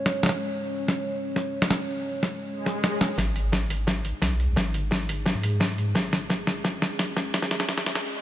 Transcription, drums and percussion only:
0.06 snare medium
0.23 snare medium
0.26 snare medium
0.29 snare soft
0.88 snare soft
1.36 snare soft
1.62 snare medium
1.70 snare medium
2.23 snare soft
2.66 snare soft
2.84 snare medium
3.01 snare medium
3.18 kick medium
3.18 snare soft
3.18 closed hi-hat medium
3.36 closed hi-hat medium
3.52 kick medium
3.52 snare soft
3.52 closed hi-hat medium
3.70 closed hi-hat medium
3.87 kick medium
3.87 snare medium
3.87 closed hi-hat medium
4.05 closed hi-hat medium
4.22 kick medium
4.22 snare medium
4.22 closed hi-hat medium
4.40 closed hi-hat soft
4.56 kick loud
4.56 snare medium
4.56 closed hi-hat medium
4.74 closed hi-hat medium
4.91 kick medium
4.91 snare medium
4.91 closed hi-hat medium
5.09 closed hi-hat medium
5.26 kick medium
5.26 snare medium
5.26 closed hi-hat medium
5.43 closed hi-hat medium
5.60 kick medium
5.60 snare medium
5.60 closed hi-hat medium
5.78 closed hi-hat soft
5.95 kick loud
5.95 snare medium
5.95 closed hi-hat medium
6.13 snare medium
6.13 closed hi-hat medium
6.30 kick medium
6.30 snare medium
6.30 closed hi-hat medium
6.47 snare medium
6.47 closed hi-hat medium
6.64 kick loud
6.64 snare medium
6.64 closed hi-hat medium
6.82 snare medium
6.82 closed hi-hat medium
6.99 kick medium
6.99 snare medium
6.99 closed hi-hat medium
7.17 snare medium
7.17 closed hi-hat soft
7.34 kick loud
7.34 snare medium
7.34 closed hi-hat medium
7.42 snare medium
7.51 snare medium
7.51 closed hi-hat medium
7.60 snare medium
7.69 kick medium
7.69 snare medium
7.69 closed hi-hat medium
7.78 snare medium
7.86 snare loud
7.86 closed hi-hat medium
7.95 snare medium

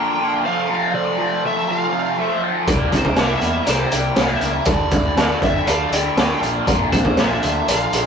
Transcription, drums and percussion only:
2.68 kick loud
2.68 closed hi-hat loud
2.92 kick medium
2.92 closed hi-hat medium
3.05 kick medium
3.16 snare loud
3.16 closed hi-hat medium
3.41 closed hi-hat medium
3.66 snare soft
3.66 closed hi-hat medium
3.91 closed hi-hat medium
4.16 snare loud
4.16 closed hi-hat loud
4.41 closed hi-hat medium
4.65 kick loud
4.65 closed hi-hat medium
4.91 kick medium
4.91 closed hi-hat medium
5.17 snare loud
5.17 closed hi-hat medium
5.42 kick medium
5.42 closed hi-hat medium
5.67 closed hi-hat medium
5.92 closed hi-hat medium
6.17 snare loud
6.17 closed hi-hat medium
6.43 closed hi-hat medium
6.67 kick loud
6.67 closed hi-hat medium
6.92 kick medium
6.92 closed hi-hat medium
7.05 kick medium
7.17 snare loud
7.17 closed hi-hat medium
7.43 closed hi-hat medium
7.68 closed hi-hat loud
7.93 closed hi-hat medium

